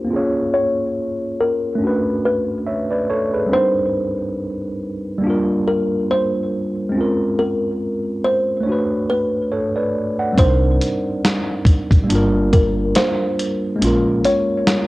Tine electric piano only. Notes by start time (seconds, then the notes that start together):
Already playing: A#3 D4 F4 G4 A#4
0.04 A#3 C4
0.11 C#4 F4 G#4
0.16 C#5
1.75 A3 C#4
1.81 D4 F#4
1.87 B4
2.67 C#5 E5
2.91 B4 D5
3.10 A4 C#5
3.34 G#4 B4
3.46 G3 C4
3.52 D4 D#4
3.58 A#4
5.18 G3 A#3
5.24 D4 F4
5.30 A#4
6.89 G#3 C4
6.95 C#4 F4
7.01 A#4
8.60 A3 C#5
8.66 D4 F#4
8.72 B4
9.52 A4 C#5
9.76 B4 D5
10.19 D5 F#5
10.33 G3 C4
10.38 D4 D#4
10.44 A#4
12.04 G3 A#3
12.10 D4 F4
12.15 A#4
13.76 G#3 A#3
13.81 C#4 F4
13.87 A#4